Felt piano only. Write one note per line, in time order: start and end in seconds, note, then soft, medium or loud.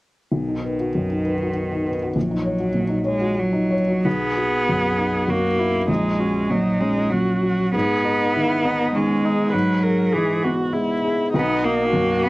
0.32 2.11 B1 soft
0.49 0.73 D#4 soft
0.64 0.89 B4 soft
0.80 1.05 F#4 soft
0.95 1.20 F#2 soft
1.09 1.34 D#4 soft
1.26 1.50 B4 soft
1.42 1.90 F#4 soft
1.72 1.95 D#4 soft
1.86 2.10 B4 soft
2.02 2.16 F#4 soft
2.16 4.02 A#1 soft
2.31 2.54 D#4 soft
2.45 2.68 C#5 soft
2.60 2.84 F#4 soft
2.74 2.99 A#2 soft
2.89 3.14 D#4 soft
3.04 3.30 C#5 soft
3.21 3.75 F#4 soft
3.53 3.81 D#4 soft
3.71 3.98 C#5 soft
3.88 4.05 F#4 soft
4.05 5.84 B1 soft
4.37 4.86 F#4 soft
4.69 5.17 F#2 soft
4.97 5.46 D#4 soft
5.28 5.76 F#2 soft
5.58 5.88 F#4 soft
5.88 7.70 A#1 soft
6.20 6.68 F#4 soft
6.50 6.98 A#2 soft
6.80 7.29 C#4 soft
7.12 7.62 A#2 soft
7.43 7.74 F#4 soft
7.75 9.50 G#2 soft
8.05 8.52 G#4 soft
8.36 8.83 D#3 soft
8.65 9.12 B3 soft
8.95 9.42 D#3 soft
9.25 9.54 G#4 soft
9.54 11.30 G#2 soft
9.85 10.32 G#4 soft
10.16 10.63 G#3 soft
10.45 10.92 B3 soft
10.73 11.21 G#3 soft
11.04 11.34 G#4 soft
11.34 12.29 B1 medium
11.63 12.11 F#4 soft
11.93 12.29 F#2 soft
12.24 12.29 B3 soft